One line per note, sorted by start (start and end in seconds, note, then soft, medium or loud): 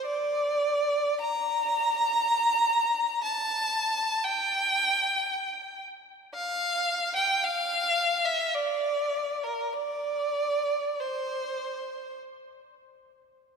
0.05 1.17 D5 medium
1.21 3.24 A#5 medium
3.24 4.23 A5 medium
4.24 5.82 G5 medium
6.34 7.11 F5 medium
7.16 7.43 G5 medium
7.44 8.26 F5 medium
8.25 8.53 E5 medium
8.55 9.42 D5 medium
9.44 9.73 A#4 medium
9.73 10.99 D5 medium
11.00 12.19 C5 medium